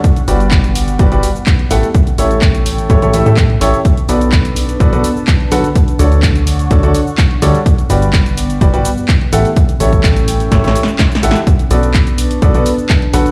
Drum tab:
HH |x--x--o--x--x--x--o--x--x--x--o-----x--x--o--x--|x--x--o--x--x--x--o--x--x--x--o-----x--x--o--x--|x--x--o--x--x--x--o--x--x--x--o-----x--x--o--x--|x--x--o--x--x--x--o--x--x--x--o-----x--x--o--x--|
SH |x--x--x--x--x--x--x--x--x--x--x--x--x-----x--x--|x--x--x--x--x--x--x--x--x--x--x--x--x-----x--x--|x--x--x--x--x--x--x--x--x--x--x--x--x-----x--x--|x--x--x--x--x--x--x--x--x--x--x--x--x-----x--x--|
CP |------------x-----------------------x-----------|------------x-----------------------x-----------|------------x-----------------------x-----------|------------x-----------------------x-----------|
SD |------------------------------------------------|------------------------------------------------|------------------------------------------------|------------------------------------------------|
BD |o-----------o-----------o-----------o-----------|o-----------o-----------o-----------o-----------|o-----------o-----------o-----------o-----------|o-----------o-----------o-----------o-----------|

HH |x--x--o--x--x--x--o--x--x--x--o-----x--x--o--x--|x--x--o--x--x--x--o--x--x--x--o-----x--x--o--x--|x--x--o--x--x--x--o--x--x--x--o-----x--x--o--x--|
SH |x--x--x--x--x--x--x--x--x--x--x--x--x-----x--x--|x--x--x--x--x--x--x--x--x--x--x--x--x--x--x--x--|x--x--x--x--x--x--x--x--x--x--x--x--x-----x--x--|
CP |------------x-----------------------x-----------|------------x-----------------------x-----------|------------x-----------------------x-----------|
SD |------------------------------------------------|------------------------o---o---o---o---o---o---|------------------------------------------------|
BD |o-----------o-----------o-----------o-----------|o--------o--o-----------o-----------o-----------|o-----------o-----------o-----------o-----------|